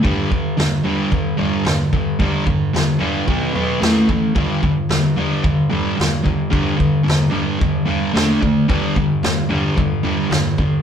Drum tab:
SD |--o---o-|--o---o-|--o---o-|--o---o-|
FT |oooooooo|oooooooo|oooooooo|oooooooo|
BD |oo--o--o|oo--o--o|oo--o--o|oo--o--o|

SD |--o---o-|
FT |oooooooo|
BD |oo--o--o|